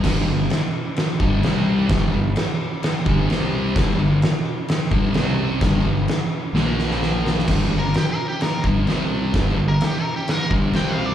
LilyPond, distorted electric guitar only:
\new Staff \with { instrumentName = "Distorted electric guitar" } { \clef bass \time 4/4 \key g \minor \tempo 4 = 129 <g, d g>8 <g, d>8 r4. <g, d g>8 <c g c'>4 | <g, d g>8 <g, d>8 r4. <g, d g>8 <c g c'>4 | <g, d g>8 <g, d>8 r4. <g, d g>8 <c g c'>4 | <g, d g>8 <g, d>8 r4 <bes, f bes>2 |
<g, d g>8 <g, d>8 r4. <g, d g>8 <c g c'>4 | <g, d g>8 <g, d>8 r4. <g, d g>8 <c g c'>4 | }